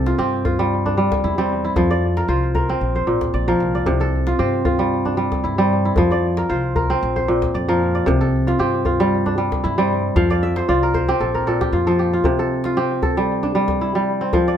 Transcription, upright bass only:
0, 0, Header, 1, 2, 480
1, 0, Start_track
1, 0, Tempo, 524017
1, 1618, Time_signature, 4, 2, 24, 8
1, 13346, End_track
2, 0, Start_track
2, 0, Title_t, "Upright bass"
2, 0, Program_c, 0, 32
2, 0, Note_on_c, 0, 36, 103
2, 98, Note_off_c, 0, 36, 0
2, 173, Note_on_c, 0, 43, 90
2, 985, Note_off_c, 0, 43, 0
2, 1135, Note_on_c, 0, 40, 93
2, 1541, Note_off_c, 0, 40, 0
2, 1614, Note_on_c, 0, 41, 102
2, 2021, Note_off_c, 0, 41, 0
2, 2091, Note_on_c, 0, 36, 86
2, 2500, Note_off_c, 0, 36, 0
2, 2574, Note_on_c, 0, 34, 82
2, 2780, Note_off_c, 0, 34, 0
2, 2814, Note_on_c, 0, 33, 67
2, 3034, Note_off_c, 0, 33, 0
2, 3056, Note_on_c, 0, 34, 87
2, 3275, Note_off_c, 0, 34, 0
2, 3299, Note_on_c, 0, 36, 87
2, 3517, Note_off_c, 0, 36, 0
2, 3539, Note_on_c, 0, 36, 107
2, 3946, Note_off_c, 0, 36, 0
2, 4025, Note_on_c, 0, 43, 85
2, 4836, Note_off_c, 0, 43, 0
2, 4990, Note_on_c, 0, 43, 90
2, 5395, Note_off_c, 0, 43, 0
2, 5472, Note_on_c, 0, 41, 96
2, 5876, Note_off_c, 0, 41, 0
2, 5956, Note_on_c, 0, 36, 85
2, 6359, Note_off_c, 0, 36, 0
2, 6436, Note_on_c, 0, 34, 97
2, 6839, Note_off_c, 0, 34, 0
2, 6916, Note_on_c, 0, 41, 95
2, 7319, Note_off_c, 0, 41, 0
2, 7397, Note_on_c, 0, 36, 104
2, 7799, Note_off_c, 0, 36, 0
2, 7878, Note_on_c, 0, 43, 82
2, 8684, Note_off_c, 0, 43, 0
2, 8836, Note_on_c, 0, 43, 96
2, 9238, Note_off_c, 0, 43, 0
2, 9306, Note_on_c, 0, 41, 104
2, 9712, Note_off_c, 0, 41, 0
2, 9788, Note_on_c, 0, 36, 84
2, 10192, Note_off_c, 0, 36, 0
2, 10262, Note_on_c, 0, 34, 87
2, 10667, Note_off_c, 0, 34, 0
2, 10741, Note_on_c, 0, 41, 94
2, 11145, Note_off_c, 0, 41, 0
2, 13346, End_track
0, 0, End_of_file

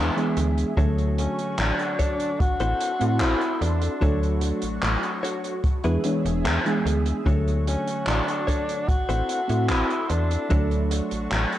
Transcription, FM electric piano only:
0, 0, Header, 1, 2, 480
1, 0, Start_track
1, 0, Tempo, 810811
1, 459, Time_signature, 4, 2, 24, 8
1, 6858, End_track
2, 0, Start_track
2, 0, Title_t, "FM electric piano"
2, 0, Program_c, 0, 5
2, 0, Note_on_c, 0, 52, 94
2, 0, Note_on_c, 0, 56, 89
2, 0, Note_on_c, 0, 59, 88
2, 0, Note_on_c, 0, 62, 83
2, 0, Note_on_c, 0, 73, 106
2, 70, Note_off_c, 0, 52, 0
2, 71, Note_off_c, 0, 56, 0
2, 72, Note_off_c, 0, 59, 0
2, 73, Note_off_c, 0, 62, 0
2, 74, Note_off_c, 0, 73, 0
2, 96, Note_on_c, 0, 52, 89
2, 97, Note_on_c, 0, 56, 81
2, 100, Note_on_c, 0, 59, 80
2, 102, Note_on_c, 0, 62, 82
2, 105, Note_on_c, 0, 68, 101
2, 428, Note_off_c, 0, 52, 0
2, 429, Note_off_c, 0, 56, 0
2, 431, Note_off_c, 0, 59, 0
2, 432, Note_off_c, 0, 62, 0
2, 433, Note_off_c, 0, 68, 0
2, 450, Note_on_c, 0, 54, 89
2, 455, Note_on_c, 0, 57, 79
2, 459, Note_on_c, 0, 73, 84
2, 464, Note_on_c, 0, 50, 82
2, 468, Note_on_c, 0, 69, 102
2, 1401, Note_off_c, 0, 54, 0
2, 1403, Note_off_c, 0, 57, 0
2, 1405, Note_off_c, 0, 73, 0
2, 1407, Note_off_c, 0, 50, 0
2, 1410, Note_off_c, 0, 69, 0
2, 1772, Note_on_c, 0, 60, 93
2, 1781, Note_on_c, 0, 64, 84
2, 1790, Note_on_c, 0, 66, 104
2, 2347, Note_off_c, 0, 60, 0
2, 2351, Note_off_c, 0, 64, 0
2, 2356, Note_off_c, 0, 66, 0
2, 2370, Note_on_c, 0, 54, 91
2, 2374, Note_on_c, 0, 57, 83
2, 2379, Note_on_c, 0, 73, 84
2, 2383, Note_on_c, 0, 62, 84
2, 2387, Note_on_c, 0, 69, 100
2, 3320, Note_off_c, 0, 54, 0
2, 3323, Note_off_c, 0, 57, 0
2, 3325, Note_off_c, 0, 73, 0
2, 3327, Note_off_c, 0, 62, 0
2, 3329, Note_off_c, 0, 69, 0
2, 3456, Note_on_c, 0, 52, 86
2, 3458, Note_on_c, 0, 56, 78
2, 3460, Note_on_c, 0, 59, 74
2, 3463, Note_on_c, 0, 62, 72
2, 3465, Note_on_c, 0, 68, 95
2, 3553, Note_off_c, 0, 52, 0
2, 3554, Note_off_c, 0, 56, 0
2, 3555, Note_off_c, 0, 59, 0
2, 3557, Note_off_c, 0, 62, 0
2, 3558, Note_off_c, 0, 68, 0
2, 3574, Note_on_c, 0, 52, 92
2, 3576, Note_on_c, 0, 56, 88
2, 3578, Note_on_c, 0, 59, 88
2, 3581, Note_on_c, 0, 62, 91
2, 3583, Note_on_c, 0, 73, 105
2, 3909, Note_off_c, 0, 52, 0
2, 3910, Note_off_c, 0, 56, 0
2, 3911, Note_off_c, 0, 59, 0
2, 3913, Note_off_c, 0, 62, 0
2, 3914, Note_off_c, 0, 73, 0
2, 3936, Note_on_c, 0, 52, 92
2, 3938, Note_on_c, 0, 56, 85
2, 3940, Note_on_c, 0, 59, 81
2, 3943, Note_on_c, 0, 62, 85
2, 3945, Note_on_c, 0, 68, 103
2, 4268, Note_off_c, 0, 52, 0
2, 4270, Note_off_c, 0, 56, 0
2, 4271, Note_off_c, 0, 59, 0
2, 4272, Note_off_c, 0, 62, 0
2, 4273, Note_off_c, 0, 68, 0
2, 4288, Note_on_c, 0, 54, 87
2, 4294, Note_on_c, 0, 57, 83
2, 4299, Note_on_c, 0, 73, 87
2, 4303, Note_on_c, 0, 50, 86
2, 4307, Note_on_c, 0, 69, 101
2, 5240, Note_off_c, 0, 54, 0
2, 5242, Note_off_c, 0, 57, 0
2, 5245, Note_off_c, 0, 73, 0
2, 5247, Note_off_c, 0, 50, 0
2, 5249, Note_off_c, 0, 69, 0
2, 5610, Note_on_c, 0, 60, 92
2, 5619, Note_on_c, 0, 64, 87
2, 5628, Note_on_c, 0, 66, 102
2, 6186, Note_off_c, 0, 60, 0
2, 6190, Note_off_c, 0, 64, 0
2, 6195, Note_off_c, 0, 66, 0
2, 6210, Note_on_c, 0, 54, 94
2, 6214, Note_on_c, 0, 57, 81
2, 6218, Note_on_c, 0, 73, 81
2, 6223, Note_on_c, 0, 62, 82
2, 6227, Note_on_c, 0, 69, 102
2, 6858, Note_off_c, 0, 54, 0
2, 6858, Note_off_c, 0, 57, 0
2, 6858, Note_off_c, 0, 62, 0
2, 6858, Note_off_c, 0, 69, 0
2, 6858, Note_off_c, 0, 73, 0
2, 6858, End_track
0, 0, End_of_file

